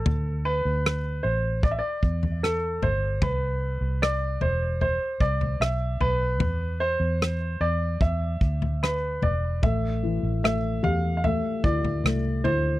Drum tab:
SD |----r-------r---|----r-------r---|----r-------r---|----r-------r---|
FT |o-------o--o--o-|o-----o-o--o--o-|o-------o--o--o-|o-----o-o--o--o-|
BD |--------o-o-----|o---------o-----|--------o-o-----|o---------o-----|